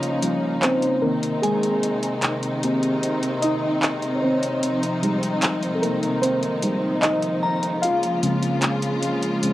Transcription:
Already playing: C#3 F3 G3 A#3 C#4 D#4 C#5 D#5
0.03 closed hi-hat
0.22 F3 G3 C#4, closed hi-hat
0.62 C4 C5, clap, closed hi-hat
0.82 closed hi-hat
1.02 C3 D#3 A#3 C4 D#4 A#4
1.23 closed hi-hat
1.42 G#3 G#4 G#5, closed hi-hat
1.63 closed hi-hat
1.83 closed hi-hat
2.03 closed hi-hat
2.22 clap, closed hi-hat
2.43 closed hi-hat
2.63 A#3 C4 G4, closed hi-hat
2.83 closed hi-hat
3.03 closed hi-hat
3.23 closed hi-hat
3.42 D#4 D#5, closed hi-hat
3.83 clap, closed hi-hat
4.02 closed hi-hat
4.15 C#5
4.22 C4 C5
4.43 closed hi-hat
4.63 F3, closed hi-hat
4.83 closed hi-hat
5.03 G3 G#3 D#4, closed hi-hat
5.23 closed hi-hat
5.42 clap, closed hi-hat
5.63 closed hi-hat
5.75 A4
5.82 A#3 A#4, closed hi-hat
6.03 closed hi-hat
6.22 C4 C5, closed hi-hat
6.43 closed hi-hat
6.62 G3 G#3 D#4, closed hi-hat
7.02 D#4 D#5, clap, closed hi-hat
7.22 closed hi-hat
7.43 A#5
7.63 closed hi-hat
7.82 C#3 G#3 A#3 F4 F5, closed hi-hat
8.03 closed hi-hat
8.23 C#3 G#3 C4, closed hi-hat
8.43 closed hi-hat
8.62 clap, closed hi-hat
8.82 closed hi-hat
9.03 closed hi-hat
9.23 closed hi-hat
9.43 C#3 G#3 C4, closed hi-hat

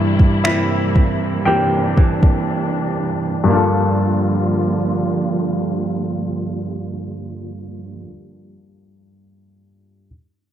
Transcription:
Already playing: G2 C3 E3 G3 A#3 D4 E4 D5
0.19 kick
0.44 E3 A#3 C4 E4 E5, finger snap
0.96 kick
1.45 E3 A#3 C4 D4 G4 G5
1.97 E3, kick
2.23 kick
3.44 G2 A#3
3.48 G2 D3 F3 G3 A#3 D4 F4
3.52 A#3 D4 F4
3.56 A4

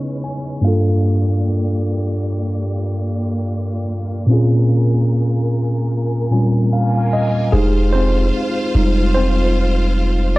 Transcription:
Already playing: C#3 G#3 B3 C#4 D#4 E4 G#4 B4 C#5
0.24 G#5
0.61 G2 A#3 D4 F4 G4 D5 F5
0.66 F4 A4
4.26 A#2 C4 C#4 A#4 G#5
4.31 F4 G#4
6.31 A#2 G3 C4 C#4 F4 G#5
6.73 F5
7.13 D#5
7.52 F1 G#3 D#4 F4 G4 G#4 C5 F5
7.93 C4 C5
8.75 F1 G3 G#3 D#4
9.14 C4 C5

